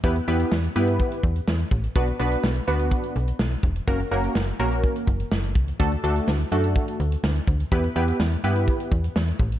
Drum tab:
HH |xxxx-xxxxxxx-xxx|xxxx-xxxxxxx-xxx|xxxx-xxxxxxx-xxx|xxxx-xxxxxxx-xxx|
SD |----o-------o---|----o-------o---|----o-------o---|----o-------o---|
BD |o-------o-o---o-|o-------o-----o-|o-------o-o---o-|o-------o-----o-|

HH |xxxx-xxxxxxx-xxx|
SD |----o-------o---|
BD |o-------o-o---o-|